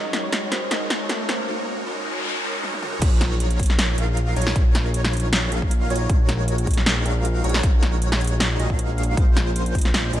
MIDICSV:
0, 0, Header, 1, 9, 480
1, 0, Start_track
1, 0, Tempo, 384615
1, 1848, Time_signature, 4, 2, 24, 8
1, 12730, End_track
2, 0, Start_track
2, 0, Title_t, "Digital synth lead"
2, 0, Program_c, 0, 84
2, 3769, Note_on_c, 0, 73, 104
2, 4942, Note_off_c, 0, 73, 0
2, 4968, Note_on_c, 0, 77, 98
2, 5421, Note_off_c, 0, 77, 0
2, 5449, Note_on_c, 0, 73, 107
2, 5662, Note_off_c, 0, 73, 0
2, 5687, Note_on_c, 0, 73, 105
2, 6861, Note_off_c, 0, 73, 0
2, 6887, Note_on_c, 0, 77, 101
2, 7341, Note_off_c, 0, 77, 0
2, 7367, Note_on_c, 0, 73, 107
2, 7581, Note_off_c, 0, 73, 0
2, 7609, Note_on_c, 0, 73, 106
2, 8782, Note_off_c, 0, 73, 0
2, 8808, Note_on_c, 0, 77, 104
2, 9261, Note_off_c, 0, 77, 0
2, 9287, Note_on_c, 0, 73, 107
2, 9501, Note_off_c, 0, 73, 0
2, 9524, Note_on_c, 0, 73, 105
2, 10699, Note_off_c, 0, 73, 0
2, 10727, Note_on_c, 0, 75, 84
2, 10825, Note_off_c, 0, 75, 0
2, 10856, Note_on_c, 0, 77, 105
2, 11421, Note_off_c, 0, 77, 0
2, 11446, Note_on_c, 0, 72, 105
2, 12620, Note_off_c, 0, 72, 0
2, 12647, Note_on_c, 0, 75, 102
2, 12730, Note_off_c, 0, 75, 0
2, 12730, End_track
3, 0, Start_track
3, 0, Title_t, "Synth pluck"
3, 0, Program_c, 1, 84
3, 0, Note_on_c, 1, 75, 89
3, 224, Note_off_c, 1, 75, 0
3, 295, Note_on_c, 1, 73, 84
3, 584, Note_off_c, 1, 73, 0
3, 645, Note_on_c, 1, 72, 83
3, 869, Note_off_c, 1, 72, 0
3, 885, Note_on_c, 1, 75, 89
3, 1181, Note_off_c, 1, 75, 0
3, 1256, Note_on_c, 1, 73, 90
3, 1544, Note_off_c, 1, 73, 0
3, 1606, Note_on_c, 1, 72, 93
3, 1829, Note_off_c, 1, 72, 0
3, 12730, End_track
4, 0, Start_track
4, 0, Title_t, "Supersaw synth"
4, 0, Program_c, 2, 81
4, 0, Note_on_c, 2, 56, 88
4, 0, Note_on_c, 2, 63, 78
4, 0, Note_on_c, 2, 66, 77
4, 0, Note_on_c, 2, 70, 75
4, 0, Note_on_c, 2, 73, 96
4, 870, Note_off_c, 2, 56, 0
4, 870, Note_off_c, 2, 63, 0
4, 870, Note_off_c, 2, 66, 0
4, 870, Note_off_c, 2, 70, 0
4, 870, Note_off_c, 2, 73, 0
4, 887, Note_on_c, 2, 63, 85
4, 888, Note_on_c, 2, 66, 82
4, 888, Note_on_c, 2, 70, 83
4, 888, Note_on_c, 2, 73, 99
4, 889, Note_on_c, 2, 56, 88
4, 1830, Note_off_c, 2, 56, 0
4, 1830, Note_off_c, 2, 63, 0
4, 1830, Note_off_c, 2, 66, 0
4, 1830, Note_off_c, 2, 70, 0
4, 1830, Note_off_c, 2, 73, 0
4, 1847, Note_on_c, 2, 66, 83
4, 1848, Note_on_c, 2, 63, 84
4, 1848, Note_on_c, 2, 70, 86
4, 1848, Note_on_c, 2, 73, 105
4, 1849, Note_on_c, 2, 56, 90
4, 2310, Note_off_c, 2, 63, 0
4, 2310, Note_off_c, 2, 66, 0
4, 2310, Note_off_c, 2, 70, 0
4, 2310, Note_off_c, 2, 73, 0
4, 2311, Note_off_c, 2, 56, 0
4, 2326, Note_on_c, 2, 70, 83
4, 2327, Note_on_c, 2, 56, 90
4, 2327, Note_on_c, 2, 63, 82
4, 2327, Note_on_c, 2, 66, 83
4, 2327, Note_on_c, 2, 73, 100
4, 2789, Note_off_c, 2, 56, 0
4, 2789, Note_off_c, 2, 70, 0
4, 2790, Note_off_c, 2, 63, 0
4, 2790, Note_off_c, 2, 66, 0
4, 2790, Note_off_c, 2, 73, 0
4, 2807, Note_on_c, 2, 70, 84
4, 2808, Note_on_c, 2, 56, 95
4, 2808, Note_on_c, 2, 63, 90
4, 2808, Note_on_c, 2, 66, 87
4, 2808, Note_on_c, 2, 73, 101
4, 3030, Note_off_c, 2, 56, 0
4, 3030, Note_off_c, 2, 63, 0
4, 3030, Note_off_c, 2, 66, 0
4, 3030, Note_off_c, 2, 70, 0
4, 3030, Note_off_c, 2, 73, 0
4, 3046, Note_on_c, 2, 56, 98
4, 3046, Note_on_c, 2, 63, 94
4, 3046, Note_on_c, 2, 66, 89
4, 3046, Note_on_c, 2, 70, 87
4, 3047, Note_on_c, 2, 73, 110
4, 3269, Note_off_c, 2, 56, 0
4, 3269, Note_off_c, 2, 63, 0
4, 3269, Note_off_c, 2, 66, 0
4, 3269, Note_off_c, 2, 70, 0
4, 3270, Note_off_c, 2, 73, 0
4, 3286, Note_on_c, 2, 63, 92
4, 3286, Note_on_c, 2, 73, 104
4, 3287, Note_on_c, 2, 56, 98
4, 3287, Note_on_c, 2, 66, 89
4, 3287, Note_on_c, 2, 70, 86
4, 3509, Note_off_c, 2, 63, 0
4, 3509, Note_off_c, 2, 73, 0
4, 3510, Note_off_c, 2, 56, 0
4, 3510, Note_off_c, 2, 66, 0
4, 3510, Note_off_c, 2, 70, 0
4, 3524, Note_on_c, 2, 56, 97
4, 3524, Note_on_c, 2, 66, 92
4, 3524, Note_on_c, 2, 73, 113
4, 3525, Note_on_c, 2, 63, 92
4, 3525, Note_on_c, 2, 70, 93
4, 3748, Note_off_c, 2, 56, 0
4, 3748, Note_off_c, 2, 63, 0
4, 3748, Note_off_c, 2, 66, 0
4, 3748, Note_off_c, 2, 70, 0
4, 3748, Note_off_c, 2, 73, 0
4, 3764, Note_on_c, 2, 70, 82
4, 3765, Note_on_c, 2, 54, 91
4, 3765, Note_on_c, 2, 63, 82
4, 3765, Note_on_c, 2, 65, 88
4, 3765, Note_on_c, 2, 73, 105
4, 4939, Note_off_c, 2, 70, 0
4, 4940, Note_off_c, 2, 54, 0
4, 4940, Note_off_c, 2, 63, 0
4, 4940, Note_off_c, 2, 65, 0
4, 4940, Note_off_c, 2, 73, 0
4, 4966, Note_on_c, 2, 63, 86
4, 4966, Note_on_c, 2, 65, 87
4, 4966, Note_on_c, 2, 77, 101
4, 4967, Note_on_c, 2, 54, 92
4, 4967, Note_on_c, 2, 70, 90
4, 5420, Note_off_c, 2, 63, 0
4, 5420, Note_off_c, 2, 65, 0
4, 5420, Note_off_c, 2, 77, 0
4, 5421, Note_off_c, 2, 54, 0
4, 5421, Note_off_c, 2, 70, 0
4, 5446, Note_on_c, 2, 54, 94
4, 5447, Note_on_c, 2, 63, 89
4, 5447, Note_on_c, 2, 65, 84
4, 5447, Note_on_c, 2, 73, 100
4, 5448, Note_on_c, 2, 70, 90
4, 5660, Note_off_c, 2, 54, 0
4, 5661, Note_off_c, 2, 63, 0
4, 5661, Note_off_c, 2, 65, 0
4, 5661, Note_off_c, 2, 70, 0
4, 5661, Note_off_c, 2, 73, 0
4, 5687, Note_on_c, 2, 65, 86
4, 5687, Note_on_c, 2, 70, 88
4, 5687, Note_on_c, 2, 73, 103
4, 5688, Note_on_c, 2, 54, 95
4, 5688, Note_on_c, 2, 63, 85
4, 6861, Note_off_c, 2, 54, 0
4, 6861, Note_off_c, 2, 63, 0
4, 6861, Note_off_c, 2, 65, 0
4, 6861, Note_off_c, 2, 70, 0
4, 6861, Note_off_c, 2, 73, 0
4, 6886, Note_on_c, 2, 77, 104
4, 6887, Note_on_c, 2, 54, 97
4, 6887, Note_on_c, 2, 63, 87
4, 6887, Note_on_c, 2, 70, 86
4, 6888, Note_on_c, 2, 65, 87
4, 7340, Note_off_c, 2, 77, 0
4, 7341, Note_off_c, 2, 54, 0
4, 7341, Note_off_c, 2, 63, 0
4, 7341, Note_off_c, 2, 65, 0
4, 7341, Note_off_c, 2, 70, 0
4, 7368, Note_on_c, 2, 54, 95
4, 7368, Note_on_c, 2, 65, 87
4, 7368, Note_on_c, 2, 70, 87
4, 7368, Note_on_c, 2, 73, 108
4, 7369, Note_on_c, 2, 63, 88
4, 7581, Note_off_c, 2, 54, 0
4, 7581, Note_off_c, 2, 63, 0
4, 7581, Note_off_c, 2, 65, 0
4, 7581, Note_off_c, 2, 70, 0
4, 7581, Note_off_c, 2, 73, 0
4, 7607, Note_on_c, 2, 56, 93
4, 7607, Note_on_c, 2, 63, 84
4, 7607, Note_on_c, 2, 66, 84
4, 7607, Note_on_c, 2, 70, 88
4, 7607, Note_on_c, 2, 73, 101
4, 8781, Note_off_c, 2, 56, 0
4, 8781, Note_off_c, 2, 63, 0
4, 8781, Note_off_c, 2, 66, 0
4, 8781, Note_off_c, 2, 70, 0
4, 8781, Note_off_c, 2, 73, 0
4, 8806, Note_on_c, 2, 63, 86
4, 8806, Note_on_c, 2, 77, 109
4, 8807, Note_on_c, 2, 56, 95
4, 8807, Note_on_c, 2, 66, 86
4, 8807, Note_on_c, 2, 70, 85
4, 9260, Note_off_c, 2, 63, 0
4, 9260, Note_off_c, 2, 77, 0
4, 9261, Note_off_c, 2, 56, 0
4, 9261, Note_off_c, 2, 66, 0
4, 9261, Note_off_c, 2, 70, 0
4, 9285, Note_on_c, 2, 56, 92
4, 9285, Note_on_c, 2, 70, 88
4, 9285, Note_on_c, 2, 73, 108
4, 9286, Note_on_c, 2, 63, 90
4, 9286, Note_on_c, 2, 66, 86
4, 9500, Note_off_c, 2, 56, 0
4, 9500, Note_off_c, 2, 63, 0
4, 9500, Note_off_c, 2, 66, 0
4, 9500, Note_off_c, 2, 70, 0
4, 9500, Note_off_c, 2, 73, 0
4, 9524, Note_on_c, 2, 56, 90
4, 9524, Note_on_c, 2, 63, 85
4, 9524, Note_on_c, 2, 66, 82
4, 9524, Note_on_c, 2, 73, 105
4, 9525, Note_on_c, 2, 70, 82
4, 10699, Note_off_c, 2, 56, 0
4, 10699, Note_off_c, 2, 63, 0
4, 10699, Note_off_c, 2, 66, 0
4, 10699, Note_off_c, 2, 73, 0
4, 10700, Note_off_c, 2, 70, 0
4, 10728, Note_on_c, 2, 56, 76
4, 10728, Note_on_c, 2, 63, 70
4, 10728, Note_on_c, 2, 66, 73
4, 10728, Note_on_c, 2, 75, 88
4, 10729, Note_on_c, 2, 70, 72
4, 10826, Note_off_c, 2, 56, 0
4, 10826, Note_off_c, 2, 63, 0
4, 10826, Note_off_c, 2, 66, 0
4, 10826, Note_off_c, 2, 70, 0
4, 10826, Note_off_c, 2, 75, 0
4, 10857, Note_on_c, 2, 56, 98
4, 10858, Note_on_c, 2, 66, 92
4, 10859, Note_on_c, 2, 63, 92
4, 10859, Note_on_c, 2, 70, 97
4, 10859, Note_on_c, 2, 77, 112
4, 11422, Note_off_c, 2, 56, 0
4, 11422, Note_off_c, 2, 63, 0
4, 11422, Note_off_c, 2, 66, 0
4, 11422, Note_off_c, 2, 70, 0
4, 11422, Note_off_c, 2, 77, 0
4, 11449, Note_on_c, 2, 61, 87
4, 11449, Note_on_c, 2, 65, 85
4, 11449, Note_on_c, 2, 72, 105
4, 11450, Note_on_c, 2, 56, 91
4, 11450, Note_on_c, 2, 70, 88
4, 12622, Note_off_c, 2, 56, 0
4, 12622, Note_off_c, 2, 61, 0
4, 12622, Note_off_c, 2, 65, 0
4, 12622, Note_off_c, 2, 70, 0
4, 12622, Note_off_c, 2, 72, 0
4, 12647, Note_on_c, 2, 56, 99
4, 12647, Note_on_c, 2, 65, 87
4, 12648, Note_on_c, 2, 61, 85
4, 12648, Note_on_c, 2, 70, 86
4, 12648, Note_on_c, 2, 75, 107
4, 12730, Note_off_c, 2, 56, 0
4, 12730, Note_off_c, 2, 61, 0
4, 12730, Note_off_c, 2, 65, 0
4, 12730, Note_off_c, 2, 70, 0
4, 12730, Note_off_c, 2, 75, 0
4, 12730, End_track
5, 0, Start_track
5, 0, Title_t, "Synth keys"
5, 0, Program_c, 3, 88
5, 0, Note_on_c, 3, 61, 70
5, 0, Note_on_c, 3, 63, 62
5, 0, Note_on_c, 3, 66, 62
5, 0, Note_on_c, 3, 70, 75
5, 196, Control_c, 3, 64, 127
5, 608, Note_off_c, 3, 61, 0
5, 617, Note_off_c, 3, 63, 0
5, 622, Note_on_c, 3, 61, 64
5, 625, Note_off_c, 3, 66, 0
5, 633, Note_off_c, 3, 70, 0
5, 639, Note_on_c, 3, 63, 61
5, 656, Note_on_c, 3, 66, 59
5, 673, Note_on_c, 3, 70, 71
5, 849, Note_off_c, 3, 61, 0
5, 863, Note_on_c, 3, 61, 72
5, 866, Note_off_c, 3, 63, 0
5, 874, Note_off_c, 3, 66, 0
5, 880, Note_on_c, 3, 63, 65
5, 883, Note_off_c, 3, 70, 0
5, 898, Note_on_c, 3, 66, 68
5, 914, Note_on_c, 3, 70, 79
5, 1569, Note_off_c, 3, 61, 0
5, 1577, Note_off_c, 3, 63, 0
5, 1584, Note_on_c, 3, 61, 70
5, 1586, Note_off_c, 3, 66, 0
5, 1594, Note_off_c, 3, 70, 0
5, 1601, Note_on_c, 3, 63, 62
5, 1618, Note_on_c, 3, 66, 66
5, 1635, Note_on_c, 3, 70, 76
5, 1818, Note_off_c, 3, 61, 0
5, 1827, Note_off_c, 3, 63, 0
5, 1835, Note_off_c, 3, 66, 0
5, 1844, Note_off_c, 3, 70, 0
5, 3783, Control_c, 3, 64, 0
5, 12730, End_track
6, 0, Start_track
6, 0, Title_t, "Analog synth bass"
6, 0, Program_c, 4, 38
6, 3766, Note_on_c, 4, 34, 100
6, 4945, Note_off_c, 4, 34, 0
6, 4966, Note_on_c, 4, 34, 95
6, 5425, Note_off_c, 4, 34, 0
6, 5446, Note_on_c, 4, 34, 101
6, 5665, Note_off_c, 4, 34, 0
6, 5687, Note_on_c, 4, 34, 95
6, 6866, Note_off_c, 4, 34, 0
6, 6885, Note_on_c, 4, 34, 99
6, 7344, Note_off_c, 4, 34, 0
6, 7366, Note_on_c, 4, 34, 101
6, 7585, Note_off_c, 4, 34, 0
6, 7607, Note_on_c, 4, 34, 97
6, 8785, Note_off_c, 4, 34, 0
6, 8806, Note_on_c, 4, 34, 100
6, 9265, Note_off_c, 4, 34, 0
6, 9287, Note_on_c, 4, 34, 99
6, 9505, Note_off_c, 4, 34, 0
6, 9527, Note_on_c, 4, 34, 98
6, 10705, Note_off_c, 4, 34, 0
6, 10727, Note_on_c, 4, 34, 102
6, 10831, Note_off_c, 4, 34, 0
6, 10855, Note_on_c, 4, 34, 99
6, 11425, Note_off_c, 4, 34, 0
6, 11447, Note_on_c, 4, 34, 95
6, 12626, Note_off_c, 4, 34, 0
6, 12647, Note_on_c, 4, 34, 98
6, 12730, Note_off_c, 4, 34, 0
6, 12730, End_track
7, 0, Start_track
7, 0, Title_t, "Noise sweep"
7, 0, Program_c, 5, 103
7, 1849, Note_on_c, 5, 60, 77
7, 3769, Note_off_c, 5, 60, 0
7, 12730, End_track
8, 0, Start_track
8, 0, Title_t, "Riser"
8, 0, Program_c, 6, 103
8, 0, Note_on_c, 6, 60, 77
8, 1848, Note_off_c, 6, 60, 0
8, 12730, End_track
9, 0, Start_track
9, 0, Title_t, "Drums"
9, 165, Note_on_c, 9, 38, 72
9, 165, Note_on_c, 9, 42, 60
9, 290, Note_off_c, 9, 38, 0
9, 290, Note_off_c, 9, 42, 0
9, 406, Note_on_c, 9, 38, 79
9, 406, Note_on_c, 9, 42, 75
9, 531, Note_off_c, 9, 38, 0
9, 531, Note_off_c, 9, 42, 0
9, 645, Note_on_c, 9, 38, 76
9, 645, Note_on_c, 9, 42, 62
9, 770, Note_off_c, 9, 38, 0
9, 770, Note_off_c, 9, 42, 0
9, 887, Note_on_c, 9, 38, 81
9, 887, Note_on_c, 9, 42, 79
9, 1011, Note_off_c, 9, 38, 0
9, 1011, Note_off_c, 9, 42, 0
9, 1127, Note_on_c, 9, 38, 85
9, 1127, Note_on_c, 9, 42, 65
9, 1252, Note_off_c, 9, 38, 0
9, 1252, Note_off_c, 9, 42, 0
9, 1366, Note_on_c, 9, 38, 83
9, 1366, Note_on_c, 9, 42, 75
9, 1491, Note_off_c, 9, 38, 0
9, 1491, Note_off_c, 9, 42, 0
9, 1608, Note_on_c, 9, 38, 86
9, 1608, Note_on_c, 9, 42, 60
9, 1732, Note_off_c, 9, 38, 0
9, 1732, Note_off_c, 9, 42, 0
9, 3288, Note_on_c, 9, 48, 63
9, 3413, Note_off_c, 9, 48, 0
9, 3415, Note_on_c, 9, 48, 67
9, 3527, Note_on_c, 9, 47, 85
9, 3540, Note_off_c, 9, 48, 0
9, 3652, Note_off_c, 9, 47, 0
9, 3655, Note_on_c, 9, 45, 85
9, 3765, Note_on_c, 9, 42, 82
9, 3765, Note_on_c, 9, 49, 94
9, 3768, Note_on_c, 9, 36, 119
9, 3780, Note_off_c, 9, 45, 0
9, 3890, Note_off_c, 9, 42, 0
9, 3890, Note_off_c, 9, 49, 0
9, 3892, Note_off_c, 9, 36, 0
9, 4006, Note_on_c, 9, 40, 62
9, 4006, Note_on_c, 9, 42, 66
9, 4131, Note_off_c, 9, 40, 0
9, 4131, Note_off_c, 9, 42, 0
9, 4246, Note_on_c, 9, 42, 82
9, 4371, Note_off_c, 9, 42, 0
9, 4374, Note_on_c, 9, 42, 66
9, 4486, Note_off_c, 9, 42, 0
9, 4486, Note_on_c, 9, 42, 52
9, 4487, Note_on_c, 9, 36, 64
9, 4529, Note_off_c, 9, 42, 0
9, 4529, Note_on_c, 9, 42, 69
9, 4566, Note_off_c, 9, 42, 0
9, 4566, Note_on_c, 9, 42, 81
9, 4612, Note_off_c, 9, 36, 0
9, 4615, Note_on_c, 9, 38, 36
9, 4691, Note_off_c, 9, 42, 0
9, 4726, Note_off_c, 9, 38, 0
9, 4726, Note_on_c, 9, 38, 121
9, 4726, Note_on_c, 9, 42, 84
9, 4850, Note_off_c, 9, 38, 0
9, 4850, Note_off_c, 9, 42, 0
9, 4966, Note_on_c, 9, 42, 70
9, 5091, Note_off_c, 9, 42, 0
9, 5205, Note_on_c, 9, 42, 83
9, 5330, Note_off_c, 9, 42, 0
9, 5447, Note_on_c, 9, 42, 53
9, 5511, Note_off_c, 9, 42, 0
9, 5511, Note_on_c, 9, 42, 66
9, 5575, Note_on_c, 9, 40, 82
9, 5636, Note_off_c, 9, 42, 0
9, 5687, Note_on_c, 9, 42, 74
9, 5688, Note_on_c, 9, 36, 127
9, 5699, Note_off_c, 9, 40, 0
9, 5811, Note_off_c, 9, 42, 0
9, 5812, Note_off_c, 9, 36, 0
9, 5927, Note_on_c, 9, 40, 59
9, 5927, Note_on_c, 9, 42, 67
9, 6051, Note_off_c, 9, 40, 0
9, 6051, Note_off_c, 9, 42, 0
9, 6167, Note_on_c, 9, 42, 79
9, 6292, Note_off_c, 9, 42, 0
9, 6297, Note_on_c, 9, 38, 38
9, 6297, Note_on_c, 9, 40, 61
9, 6297, Note_on_c, 9, 42, 66
9, 6407, Note_off_c, 9, 42, 0
9, 6407, Note_on_c, 9, 42, 51
9, 6421, Note_off_c, 9, 38, 0
9, 6421, Note_off_c, 9, 40, 0
9, 6449, Note_off_c, 9, 42, 0
9, 6449, Note_on_c, 9, 42, 64
9, 6487, Note_off_c, 9, 42, 0
9, 6487, Note_on_c, 9, 42, 77
9, 6611, Note_off_c, 9, 42, 0
9, 6648, Note_on_c, 9, 38, 127
9, 6648, Note_on_c, 9, 42, 81
9, 6772, Note_off_c, 9, 38, 0
9, 6772, Note_off_c, 9, 42, 0
9, 6887, Note_on_c, 9, 42, 67
9, 7012, Note_off_c, 9, 42, 0
9, 7016, Note_on_c, 9, 36, 64
9, 7127, Note_on_c, 9, 42, 79
9, 7141, Note_off_c, 9, 36, 0
9, 7252, Note_off_c, 9, 42, 0
9, 7367, Note_on_c, 9, 42, 50
9, 7432, Note_off_c, 9, 42, 0
9, 7432, Note_on_c, 9, 42, 66
9, 7557, Note_off_c, 9, 42, 0
9, 7606, Note_on_c, 9, 42, 77
9, 7607, Note_on_c, 9, 36, 126
9, 7731, Note_off_c, 9, 42, 0
9, 7732, Note_off_c, 9, 36, 0
9, 7846, Note_on_c, 9, 40, 61
9, 7846, Note_on_c, 9, 42, 64
9, 7971, Note_off_c, 9, 40, 0
9, 7971, Note_off_c, 9, 42, 0
9, 8086, Note_on_c, 9, 42, 81
9, 8211, Note_off_c, 9, 42, 0
9, 8215, Note_on_c, 9, 42, 64
9, 8326, Note_off_c, 9, 42, 0
9, 8326, Note_on_c, 9, 42, 47
9, 8328, Note_on_c, 9, 36, 62
9, 8369, Note_off_c, 9, 42, 0
9, 8369, Note_on_c, 9, 42, 60
9, 8406, Note_off_c, 9, 42, 0
9, 8406, Note_on_c, 9, 42, 78
9, 8453, Note_off_c, 9, 36, 0
9, 8455, Note_on_c, 9, 38, 40
9, 8531, Note_off_c, 9, 42, 0
9, 8565, Note_off_c, 9, 38, 0
9, 8565, Note_on_c, 9, 38, 122
9, 8565, Note_on_c, 9, 42, 78
9, 8690, Note_off_c, 9, 38, 0
9, 8690, Note_off_c, 9, 42, 0
9, 8806, Note_on_c, 9, 42, 67
9, 8931, Note_off_c, 9, 42, 0
9, 9046, Note_on_c, 9, 42, 78
9, 9171, Note_off_c, 9, 42, 0
9, 9288, Note_on_c, 9, 42, 51
9, 9352, Note_off_c, 9, 42, 0
9, 9352, Note_on_c, 9, 42, 64
9, 9415, Note_on_c, 9, 40, 76
9, 9477, Note_off_c, 9, 42, 0
9, 9527, Note_on_c, 9, 42, 73
9, 9528, Note_on_c, 9, 36, 125
9, 9539, Note_off_c, 9, 40, 0
9, 9652, Note_off_c, 9, 42, 0
9, 9653, Note_off_c, 9, 36, 0
9, 9766, Note_on_c, 9, 40, 57
9, 9766, Note_on_c, 9, 42, 62
9, 9891, Note_off_c, 9, 40, 0
9, 9891, Note_off_c, 9, 42, 0
9, 10006, Note_on_c, 9, 42, 75
9, 10131, Note_off_c, 9, 42, 0
9, 10135, Note_on_c, 9, 38, 40
9, 10135, Note_on_c, 9, 40, 61
9, 10135, Note_on_c, 9, 42, 60
9, 10247, Note_off_c, 9, 42, 0
9, 10247, Note_on_c, 9, 42, 46
9, 10259, Note_off_c, 9, 38, 0
9, 10259, Note_off_c, 9, 40, 0
9, 10289, Note_off_c, 9, 42, 0
9, 10289, Note_on_c, 9, 42, 61
9, 10326, Note_off_c, 9, 42, 0
9, 10326, Note_on_c, 9, 42, 79
9, 10451, Note_off_c, 9, 42, 0
9, 10486, Note_on_c, 9, 38, 126
9, 10486, Note_on_c, 9, 42, 78
9, 10611, Note_off_c, 9, 38, 0
9, 10611, Note_off_c, 9, 42, 0
9, 10727, Note_on_c, 9, 42, 64
9, 10852, Note_off_c, 9, 42, 0
9, 10857, Note_on_c, 9, 36, 64
9, 10968, Note_on_c, 9, 42, 75
9, 10982, Note_off_c, 9, 36, 0
9, 11093, Note_off_c, 9, 42, 0
9, 11207, Note_on_c, 9, 42, 47
9, 11274, Note_off_c, 9, 42, 0
9, 11274, Note_on_c, 9, 42, 62
9, 11399, Note_off_c, 9, 42, 0
9, 11448, Note_on_c, 9, 36, 122
9, 11450, Note_on_c, 9, 42, 71
9, 11573, Note_off_c, 9, 36, 0
9, 11574, Note_off_c, 9, 42, 0
9, 11689, Note_on_c, 9, 40, 61
9, 11689, Note_on_c, 9, 42, 63
9, 11814, Note_off_c, 9, 40, 0
9, 11814, Note_off_c, 9, 42, 0
9, 11928, Note_on_c, 9, 42, 78
9, 12053, Note_off_c, 9, 42, 0
9, 12058, Note_on_c, 9, 42, 62
9, 12168, Note_on_c, 9, 36, 59
9, 12169, Note_off_c, 9, 42, 0
9, 12169, Note_on_c, 9, 42, 49
9, 12212, Note_off_c, 9, 42, 0
9, 12212, Note_on_c, 9, 42, 62
9, 12248, Note_off_c, 9, 42, 0
9, 12248, Note_on_c, 9, 42, 75
9, 12293, Note_off_c, 9, 36, 0
9, 12296, Note_on_c, 9, 38, 37
9, 12373, Note_off_c, 9, 42, 0
9, 12407, Note_off_c, 9, 38, 0
9, 12407, Note_on_c, 9, 38, 116
9, 12407, Note_on_c, 9, 42, 78
9, 12532, Note_off_c, 9, 38, 0
9, 12532, Note_off_c, 9, 42, 0
9, 12647, Note_on_c, 9, 42, 64
9, 12730, Note_off_c, 9, 42, 0
9, 12730, End_track
0, 0, End_of_file